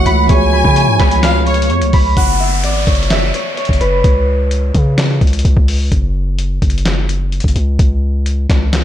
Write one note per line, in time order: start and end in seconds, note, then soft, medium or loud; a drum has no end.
0.00 0.23 E3 medium
0.00 0.25 A3 medium
0.00 0.27 A3 medium
0.00 0.26 F#4 medium
0.00 0.27 F#4 medium
0.00 0.28 C#5 medium
0.00 0.27 E5 loud
0.00 0.25 F#5 medium
0.00 0.29 C#6 medium
0.00 0.49 E6 loud
0.06 0.28 C#2 loud
0.06 0.52 B5 medium
0.06 closed hi-hat medium
0.24 2.10 F3 medium
0.24 2.12 B3 medium
0.29 0.63 C#2 loud
0.29 2.15 B3 medium
0.29 2.15 F4 medium
0.29 2.14 G#4 medium
0.29 2.15 C#5 loud
0.29 1.19 G#5 loud
0.29 0.75 C#6 medium
0.29 kick loud
0.29 closed hi-hat medium
0.34 2.16 C#5 medium
0.53 0.99 B5 medium
0.65 0.89 C#3 loud
0.65 kick loud
0.76 1.46 C#6 medium
0.76 closed hi-hat medium
0.88 0.99 G#2 loud
1.00 1.71 C#2 loud
1.00 1.93 B5 medium
1.00 kick loud
1.00 snare medium
1.00 clap medium
1.00 closed hi-hat soft
1.11 closed hi-hat medium
1.23 1.45 F5 medium
1.23 2.23 F6 medium
1.23 snare loud
1.23 clap loud
1.23 closed hi-hat medium
1.46 1.69 C#5 medium
1.46 1.70 C#6 medium
1.46 closed hi-hat soft
1.54 closed hi-hat medium
1.62 closed hi-hat medium
1.70 1.83 F2 loud
1.70 2.70 C#6 medium
1.70 closed hi-hat soft
1.82 1.93 C#2 loud
1.82 closed hi-hat medium
1.93 2.16 C#2 loud
1.93 3.29 B5 medium
1.93 kick medium
1.93 open hi-hat medium
2.17 2.65 F#1 loud
2.17 3.78 F#5 medium
2.17 kick loud
2.17 closed hi-hat medium
2.17 downlifter medium
2.40 3.11 E5 medium
2.64 2.86 G#1 loud
2.64 2.93 D5 medium
2.64 closed hi-hat medium
2.87 3.32 F#1 loud
2.87 3.34 C#5 medium
2.87 kick loud
2.87 closed hi-hat medium
2.95 closed hi-hat medium
3.03 closed hi-hat medium
3.10 4.83 E5 medium
3.10 snare loud
3.10 clap loud
3.10 closed hi-hat medium
3.34 3.57 C#5 medium
3.34 closed hi-hat medium
3.57 5.49 C#5 medium
3.57 closed hi-hat soft
3.65 3.80 F#1 loud
3.65 closed hi-hat medium
3.69 kick medium
3.69 closed hi-hat medium
3.81 4.03 F#1 loud
3.81 5.86 B4 medium
3.81 closed hi-hat medium
4.04 4.72 C#2 loud
4.04 kick loud
4.04 closed hi-hat medium
4.51 closed hi-hat medium
4.75 5.20 C#3 loud
4.75 kick loud
4.75 closed hi-hat medium
4.98 snare loud
4.98 clap medium
4.98 closed hi-hat medium
5.21 5.44 C#2 loud
5.21 kick loud
5.21 closed hi-hat soft
5.27 closed hi-hat medium
5.33 closed hi-hat medium
5.39 closed hi-hat medium
5.45 5.56 C#2 loud
5.45 kick medium
5.45 closed hi-hat medium
5.57 5.90 C#2 loud
5.57 kick medium
5.68 open hi-hat medium
5.92 6.59 F#1 loud
5.92 kick loud
5.92 closed hi-hat medium
6.39 closed hi-hat medium
6.62 7.41 F#1 loud
6.62 kick loud
6.62 closed hi-hat medium
6.70 closed hi-hat medium
6.78 closed hi-hat medium
6.85 snare loud
6.85 clap medium
6.85 closed hi-hat medium
7.09 closed hi-hat medium
7.32 closed hi-hat soft
7.40 7.55 F#1 loud
7.40 kick medium
7.40 closed hi-hat medium
7.48 closed hi-hat medium
7.56 7.78 C#2 loud
7.56 closed hi-hat medium
7.79 8.47 C#2 loud
7.79 kick loud
7.79 closed hi-hat medium
8.26 closed hi-hat medium
8.50 8.84 C#2 loud
8.50 kick loud
8.50 snare medium
8.50 clap medium
8.50 closed hi-hat medium
8.73 snare loud
8.73 clap loud
8.73 closed hi-hat medium